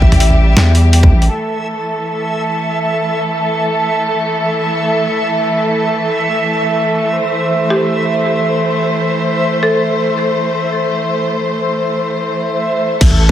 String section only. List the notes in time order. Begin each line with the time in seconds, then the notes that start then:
Already playing: E3 G3 G4
1.30 E3 A3 A4
7.15 C5
13.01 E3 A3 A4